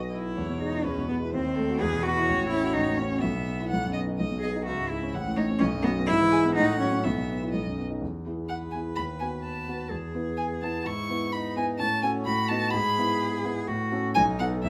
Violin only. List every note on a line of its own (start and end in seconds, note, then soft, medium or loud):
0.00 0.12 D#5 medium
0.37 0.86 C#5 medium
0.84 1.32 B4 medium
1.30 1.56 C5 medium
1.54 1.80 A4 medium
1.79 2.24 B4 medium
2.25 3.23 C#5 medium
3.21 3.68 E5 medium
3.69 3.91 F#5 medium
3.93 4.01 D#5 medium
4.18 4.40 D#5 medium
4.43 4.51 D#5 medium
4.66 5.15 E5 medium
5.14 5.38 F#5 medium
5.37 5.62 C#5 medium
5.61 6.08 D#5 medium
6.09 6.17 E5 medium
6.31 6.39 G#5 medium
6.55 7.05 F#5 medium
7.03 7.51 E5 medium
7.52 7.80 D#5 soft
8.49 8.57 F#5 medium
8.71 8.79 G#5 medium
8.95 9.03 B5 medium
9.20 9.28 G#5 medium
9.43 9.90 A5 medium
10.37 10.45 G#5 medium
10.62 10.88 A5 medium
10.86 11.33 C#6 medium
11.32 11.56 B5 medium
11.57 11.65 G#5 medium
11.79 12.02 A5 loud
12.03 12.11 G#5 medium
12.25 12.49 B5 medium
12.48 12.72 A5 loud
12.71 13.43 B5 loud
14.14 14.22 G#5 loud
14.39 14.47 F#5 medium
14.63 14.69 E5 medium